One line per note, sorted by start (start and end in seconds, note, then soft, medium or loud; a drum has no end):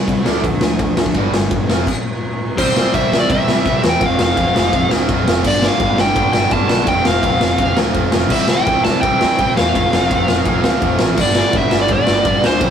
0.07 0.24 C2 loud
0.07 0.22 C3 medium
0.07 0.23 G3 loud
0.07 kick loud
0.07 ride medium
0.23 0.42 D2 loud
0.23 0.41 D3 medium
0.23 0.41 F3 loud
0.23 0.42 A3 loud
0.23 0.42 D4 loud
0.23 snare loud
0.42 0.76 D2 medium
0.42 0.59 D3 medium
0.42 0.59 F3 medium
0.42 0.59 A3 medium
0.42 kick loud
0.42 ride medium
0.61 0.77 D3 medium
0.61 0.77 F3 medium
0.61 0.78 A3 medium
0.61 snare loud
0.79 0.96 D2 medium
0.79 0.95 D3 medium
0.79 0.95 F3 medium
0.79 0.95 A3 medium
0.79 kick loud
0.79 ride medium
0.96 1.13 D2 medium
0.96 1.13 D3 medium
0.96 1.14 F3 medium
0.96 1.14 A3 medium
0.96 snare loud
1.06 kick medium
1.14 1.48 G1 loud
1.14 1.32 G2 medium
1.14 1.32 D3 medium
1.14 1.32 G3 medium
1.14 kick loud
1.14 ride medium
1.34 1.49 G2 medium
1.34 1.49 D3 medium
1.34 snare loud
1.51 1.67 G1 loud
1.51 1.67 G2 medium
1.51 1.67 D3 medium
1.51 kick loud
1.51 ride medium
1.67 1.85 F1 loud
1.67 1.85 F2 medium
1.67 1.85 C3 loud
1.67 1.85 F3 loud
1.67 snare loud
1.87 kick loud
1.87 crash loud
2.57 2.82 C2 loud
2.57 2.75 C3 loud
2.57 2.75 E3 loud
2.57 2.76 G3 medium
2.57 2.77 C4 loud
2.57 2.77 E4 loud
2.57 2.94 C5 loud
2.57 kick loud
2.57 crash loud
2.76 2.91 C3 loud
2.76 2.92 E3 medium
2.76 2.92 G3 loud
2.76 2.93 C4 loud
2.76 2.93 E4 medium
2.76 snare loud
2.92 3.06 C2 loud
2.92 3.10 C3 medium
2.92 3.11 E3 loud
2.92 3.11 G3 medium
2.92 3.12 C4 loud
2.92 3.12 E4 loud
2.92 3.19 E5 medium
2.92 kick loud
2.92 ride medium
3.12 3.23 C2 loud
3.12 3.28 C3 medium
3.12 3.28 E3 loud
3.12 3.29 G3 loud
3.12 3.29 C4 loud
3.12 3.29 E4 loud
3.12 snare loud
3.20 3.30 D5 medium
3.29 3.42 C2 loud
3.29 3.46 C3 medium
3.29 3.46 E3 medium
3.29 3.47 G3 medium
3.29 3.47 C4 medium
3.29 3.48 E4 medium
3.29 3.80 E5 medium
3.29 kick loud
3.29 ride loud
3.47 3.59 C2 loud
3.47 3.63 C3 loud
3.47 3.63 E3 loud
3.47 3.64 G3 loud
3.47 3.65 C4 loud
3.47 3.66 E4 loud
3.47 snare loud
3.64 3.78 C2 medium
3.64 3.82 C3 medium
3.64 3.82 E3 medium
3.64 3.83 G3 medium
3.64 3.83 C4 medium
3.64 3.84 E4 loud
3.64 kick loud
3.64 ride medium
3.83 3.95 E2 loud
3.83 4.00 C3 medium
3.83 4.00 E3 medium
3.83 4.00 G3 loud
3.83 4.00 C4 medium
3.83 4.01 E4 medium
3.83 snare loud
3.89 4.06 G5 loud
4.00 4.13 F1 loud
4.00 4.19 F2 medium
4.00 4.19 C3 loud
4.00 4.18 F3 loud
4.00 4.19 A3 loud
4.00 4.19 C4 medium
4.00 4.20 F4 loud
4.00 kick loud
4.00 ride medium
4.06 4.21 F5 loud
4.19 4.32 F1 medium
4.19 4.36 F2 medium
4.19 4.36 C3 loud
4.19 4.35 F3 medium
4.19 4.35 A3 loud
4.19 4.36 C4 loud
4.19 4.37 F4 loud
4.19 snare loud
4.24 4.89 F5 medium
4.36 4.49 F1 loud
4.36 4.55 F2 medium
4.36 4.56 C3 medium
4.36 4.52 F3 medium
4.36 4.53 A3 medium
4.36 4.54 C4 loud
4.36 4.54 F4 loud
4.36 kick loud
4.36 ride medium
4.54 4.68 F1 medium
4.54 4.73 F2 medium
4.54 4.74 C3 loud
4.54 4.71 F3 loud
4.54 4.71 A3 loud
4.54 4.72 C4 loud
4.54 4.72 F4 loud
4.54 snare loud
4.72 4.85 F1 loud
4.72 4.91 F2 medium
4.72 4.91 C3 medium
4.72 4.88 F3 medium
4.72 4.88 A3 medium
4.72 4.88 C4 medium
4.72 4.89 F4 medium
4.72 kick loud
4.72 ride medium
4.89 5.04 D2 loud
4.89 5.09 F2 loud
4.89 5.10 C3 loud
4.89 5.06 F3 loud
4.89 5.06 A3 loud
4.89 5.07 C4 loud
4.89 5.07 F4 loud
4.89 snare loud
4.94 5.10 F3 loud
5.07 5.21 F1 medium
5.07 5.27 F2 medium
5.07 5.28 C3 medium
5.07 5.23 F3 medium
5.07 5.24 A3 medium
5.07 5.24 C4 medium
5.07 5.24 F4 loud
5.07 kick loud
5.07 ride medium
5.12 5.28 F3 loud
5.24 5.45 F1 medium
5.24 5.44 F2 medium
5.24 5.42 F3 medium
5.24 5.42 A3 medium
5.24 5.43 C4 medium
5.24 5.43 F4 medium
5.24 snare loud
5.29 5.44 C3 medium
5.29 5.45 F3 loud
5.43 5.68 G1 loud
5.43 5.63 G2 medium
5.43 5.59 G3 medium
5.43 5.60 B3 medium
5.43 5.60 D4 loud
5.43 5.60 G4 loud
5.43 kick loud
5.43 crash loud
5.47 5.64 D3 loud
5.47 5.65 G3 loud
5.47 5.64 D5 loud
5.60 5.81 G2 medium
5.60 5.77 G3 loud
5.60 5.77 B3 loud
5.60 5.78 D4 loud
5.60 5.78 G4 loud
5.60 snare loud
5.65 5.82 D3 medium
5.65 5.82 G3 loud
5.65 5.98 F5 medium
5.78 5.92 G1 loud
5.78 5.99 G2 medium
5.78 5.97 G3 medium
5.78 5.98 B3 medium
5.78 5.99 D4 loud
5.78 5.99 G4 medium
5.78 kick loud
5.78 ride medium
5.83 6.00 D3 medium
5.83 6.01 G3 medium
5.98 6.10 G1 loud
5.98 6.16 G2 loud
5.98 6.17 D3 loud
5.98 6.16 G3 loud
5.98 6.16 B3 loud
5.98 6.17 D4 loud
5.98 6.17 G4 loud
5.98 6.32 G5 loud
5.98 snare loud
6.16 6.28 G1 loud
6.16 6.34 G2 medium
6.16 6.35 D3 medium
6.16 6.32 G3 medium
6.16 6.33 B3 medium
6.16 6.33 D4 medium
6.16 6.33 G4 medium
6.16 kick loud
6.16 ride medium
6.33 6.45 G1 loud
6.33 6.52 G2 loud
6.33 6.52 D3 loud
6.33 6.50 G3 loud
6.33 6.51 B3 medium
6.33 6.52 D4 loud
6.33 6.52 G4 loud
6.33 6.52 G5 loud
6.33 snare loud
6.37 6.53 G3 loud
6.51 6.64 G1 loud
6.51 6.69 G2 medium
6.51 6.70 D3 loud
6.51 6.68 G3 medium
6.51 6.69 B3 medium
6.51 6.69 D4 loud
6.51 6.70 G4 medium
6.51 6.67 A5 loud
6.51 kick loud
6.51 ride medium
6.68 6.82 B1 medium
6.68 6.87 G2 medium
6.68 6.87 D3 medium
6.68 6.86 G3 medium
6.68 6.86 B3 medium
6.68 6.87 D4 medium
6.68 6.87 G4 loud
6.68 6.86 A5 loud
6.68 snare loud
6.86 7.00 F1 medium
6.86 7.05 F2 medium
6.86 7.06 C3 loud
6.86 7.04 F3 medium
6.86 7.05 A3 medium
6.86 7.05 C4 loud
6.86 7.06 F4 loud
6.86 7.07 G5 loud
6.86 kick loud
6.86 ride loud
7.05 7.18 F1 loud
7.05 7.22 F2 medium
7.05 7.23 C3 loud
7.05 7.21 F3 medium
7.05 7.21 A3 loud
7.05 7.22 C4 loud
7.05 7.22 F4 medium
7.05 7.78 F5 loud
7.05 snare loud
7.22 7.35 F1 loud
7.22 7.40 F2 medium
7.22 7.41 C3 loud
7.22 7.38 F3 loud
7.22 7.39 A3 medium
7.22 7.40 C4 medium
7.22 7.40 F4 medium
7.22 kick loud
7.22 ride medium
7.39 7.54 F1 loud
7.39 7.58 F2 loud
7.39 7.58 C3 loud
7.39 7.56 F3 loud
7.39 7.57 A3 loud
7.39 7.58 C4 loud
7.39 7.57 F4 loud
7.39 snare loud
7.57 7.71 F1 loud
7.57 7.76 F2 medium
7.57 7.77 C3 loud
7.57 7.76 F3 medium
7.57 7.77 A3 medium
7.57 7.78 C4 medium
7.57 7.78 F4 medium
7.57 kick loud
7.57 ride medium
7.77 7.89 D2 loud
7.77 7.93 F2 medium
7.77 7.94 C3 loud
7.77 7.93 F3 loud
7.77 7.94 A3 loud
7.77 7.95 C4 loud
7.77 7.94 F4 loud
7.77 snare loud
7.94 8.07 F1 medium
7.94 8.11 F2 loud
7.94 8.12 C3 medium
7.94 8.12 F3 medium
7.94 8.12 A3 medium
7.94 8.13 C4 medium
7.94 8.13 F4 medium
7.94 kick loud
7.94 ride medium
8.12 8.31 F1 medium
8.12 8.30 F2 medium
8.12 8.30 C3 medium
8.12 8.30 F3 medium
8.12 8.30 A3 loud
8.12 8.30 C4 loud
8.12 8.30 F4 loud
8.12 snare loud
8.29 8.55 C2 medium
8.29 8.46 C3 medium
8.29 8.47 E3 loud
8.29 8.47 G3 loud
8.29 8.49 C4 loud
8.29 8.48 E4 loud
8.29 8.50 E5 loud
8.29 kick loud
8.29 crash loud
8.47 8.66 C3 medium
8.47 8.66 E3 loud
8.47 8.67 G3 loud
8.47 8.67 C4 loud
8.47 8.67 E4 loud
8.47 8.84 G5 loud
8.47 snare loud
8.66 8.79 C2 loud
8.66 8.84 C3 medium
8.66 8.85 E3 loud
8.66 8.86 G3 medium
8.66 8.87 C4 loud
8.66 8.86 E4 loud
8.66 kick loud
8.66 ride medium
8.84 8.98 C2 loud
8.84 9.02 C3 loud
8.84 9.03 E3 loud
8.84 9.03 G3 loud
8.84 9.03 C4 loud
8.84 9.04 E4 loud
8.84 9.01 A5 loud
8.84 snare loud
9.01 9.15 C2 loud
9.01 9.20 C3 medium
9.01 9.20 E3 medium
9.01 9.21 G3 medium
9.01 9.21 C4 medium
9.01 9.52 G5 loud
9.01 kick loud
9.01 ride medium
9.05 9.22 E4 medium
9.21 9.34 C2 loud
9.21 9.38 C3 loud
9.21 9.38 E3 medium
9.21 9.39 G3 loud
9.21 9.39 C4 loud
9.21 9.40 E4 loud
9.21 snare loud
9.38 9.51 C2 medium
9.38 9.56 C3 medium
9.38 9.57 E3 medium
9.38 9.58 G3 medium
9.38 9.58 C4 medium
9.38 9.59 E4 loud
9.38 kick loud
9.38 ride medium
9.57 9.70 E2 medium
9.57 9.74 C3 medium
9.57 9.74 E3 medium
9.57 9.74 G3 loud
9.57 9.75 C4 medium
9.57 9.75 E4 loud
9.57 10.96 F5 medium
9.57 snare loud
9.75 9.88 F1 medium
9.75 9.91 F2 loud
9.75 9.92 C3 loud
9.75 9.92 F3 medium
9.75 9.93 A3 loud
9.75 9.93 C4 loud
9.75 9.93 F4 loud
9.75 kick loud
9.75 ride loud
9.92 10.05 F1 medium
9.92 10.09 F2 medium
9.92 10.10 C3 medium
9.92 10.09 F3 loud
9.92 10.10 A3 loud
9.92 10.11 C4 loud
9.92 10.11 F4 loud
9.92 snare loud
10.10 10.23 F1 loud
10.10 10.26 F2 medium
10.10 10.27 C3 medium
10.10 10.28 F3 loud
10.10 10.28 A3 medium
10.10 10.29 C4 loud
10.10 10.30 F4 loud
10.10 kick loud
10.10 ride medium
10.27 10.41 F1 loud
10.27 10.45 F2 loud
10.27 10.46 C3 loud
10.27 10.46 F3 loud
10.27 10.46 A3 medium
10.27 10.46 C4 loud
10.27 10.47 F4 loud
10.27 snare loud
10.45 10.59 F1 loud
10.45 10.63 F2 medium
10.45 10.64 C3 medium
10.45 10.63 F3 medium
10.45 10.64 A3 medium
10.45 10.65 C4 medium
10.45 10.64 F4 loud
10.45 kick loud
10.45 ride medium
10.64 10.76 D2 loud
10.64 10.80 F2 loud
10.64 10.81 C3 loud
10.64 10.80 F3 loud
10.64 10.80 A3 loud
10.64 10.82 C4 loud
10.64 10.82 F4 loud
10.64 snare loud
10.81 10.94 F1 loud
10.81 10.99 F2 medium
10.81 10.99 C3 loud
10.81 10.98 F3 medium
10.81 10.99 A3 medium
10.81 10.99 C4 medium
10.81 10.99 F4 medium
10.81 kick loud
10.81 ride medium
10.99 11.20 A1 medium
10.99 11.17 F2 medium
10.99 11.17 C3 loud
10.99 11.16 F3 medium
10.99 11.17 A3 medium
10.99 11.17 C4 medium
10.99 11.17 F4 medium
10.99 snare loud
11.16 11.42 G1 loud
11.16 11.34 G2 medium
11.16 11.34 D3 medium
11.16 11.36 G3 loud
11.16 11.36 B3 loud
11.16 11.36 D4 medium
11.16 11.37 G4 loud
11.16 kick loud
11.16 crash loud
11.21 11.56 D5 loud
11.35 11.52 G2 loud
11.35 11.54 D3 loud
11.35 11.55 G3 medium
11.35 11.54 B3 loud
11.35 11.55 D4 loud
11.35 11.56 G4 loud
11.35 snare loud
11.53 11.66 G1 loud
11.53 11.70 G2 medium
11.53 11.70 D3 medium
11.53 11.72 G3 loud
11.53 11.71 B3 medium
11.53 11.73 D4 medium
11.53 11.73 G4 medium
11.53 kick loud
11.53 ride medium
11.57 11.78 E5 loud
11.71 11.85 G1 loud
11.71 11.88 G2 medium
11.71 11.88 D3 loud
11.71 11.89 G3 loud
11.71 11.89 B3 loud
11.71 11.89 D4 loud
11.71 11.90 G4 loud
11.71 snare loud
11.81 11.92 D5 medium
11.88 12.02 G1 loud
11.88 12.07 G2 medium
11.88 12.07 D3 medium
11.88 12.08 G3 loud
11.88 12.07 B3 medium
11.88 12.08 D4 medium
11.88 12.09 G4 medium
11.88 kick loud
11.88 ride medium
11.93 12.47 D5 loud
12.07 12.20 G1 loud
12.07 12.24 G2 loud
12.07 12.25 D3 loud
12.07 12.26 G3 loud
12.07 12.26 B3 loud
12.07 12.26 D4 loud
12.07 12.27 G4 loud
12.07 snare loud
12.25 12.37 G1 loud
12.25 12.42 G2 medium
12.25 12.42 D3 medium
12.25 12.44 G3 loud
12.25 12.44 B3 medium
12.25 12.44 D4 loud
12.25 12.45 G4 medium
12.25 kick loud
12.25 ride medium
12.43 12.63 D2 medium
12.43 12.60 G2 medium
12.43 12.60 D3 loud
12.43 12.61 G3 medium
12.43 12.61 B3 medium
12.43 12.61 D4 medium
12.43 12.62 G4 medium
12.43 12.70 C5 medium
12.43 snare loud
12.60 12.70 C2 medium
12.60 12.70 C3 medium
12.60 12.70 G3 medium
12.60 12.70 C4 loud
12.60 12.70 E4 loud
12.60 12.70 G4 loud
12.60 kick loud
12.60 ride loud